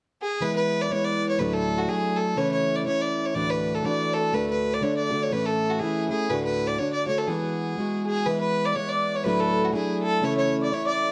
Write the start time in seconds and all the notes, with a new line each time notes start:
0.22 G#4
0.41 E3 G#3 B3 E4 B4
0.56 B4
0.81 D5
0.90 E3 G#3 B3 E4 C#5
1.05 D5
1.29 C#5
1.39 D2 A2 F#3 A3 D4 E4 B4
1.53 A4
1.78 F#4
1.88 F#3 A3 D4 E4 G#4
2.16 A4
2.36 C#3 E3 A3 C#4 E4 C#5
2.52 C#5
2.76 D5
2.85 E3 A3 C#4 E4 C#5
3.02 D5
3.25 C#5
3.35 D2 A2 E3 A3 D4 F#4 D5
3.50 B4
3.75 A4
3.84 E3 A3 D4 F#4 D5
4.14 A4
4.32 D2 A2 D3 A3 D4 F#4 B4
4.50 B4
4.74 D5
4.81 D3 A3 D4 F#4 C#5
4.97 D5
5.10 D3 A3 D4 F#4
5.23 C#5
5.31 A2 E3 A3 C#4 E4 B4
5.46 A4
5.70 F#4
5.79 E3 A3 C#4 G#4
5.84 E4
6.09 A3 C#4 E4 G#4
6.30 D2 A2 D3 A3 D4 F#4 B4
6.43 B4
6.67 D5
6.78 D3 A3 D4 F#4 C#5
6.93 D5
7.07 D3 A3 D4 F#4 C#5
7.18 A4
7.27 E3 G#3 B3 F#4 G#4
7.77 E3 G#3 B3 F#4
8.05 G#4
8.26 E3 G#3 B3 E4 B4
8.40 B4
8.65 D5
8.72 E3 C#5 D5
8.76 G#3 B3 E4 C#5
8.89 D5
9.11 C#5 D5
9.16 C#5
9.24 D2 A2 F#3 A3 D4 E4 B4
9.40 A4
9.64 F#4
9.72 F#3 A3 D4 E4 G#4
10.02 A4
10.22 C#3 E3 A3 C#4 E4 C#5
10.36 C#5
10.61 D5
10.69 E3 A3 C#4 C#5 D5
10.73 E4 C#5
10.86 D5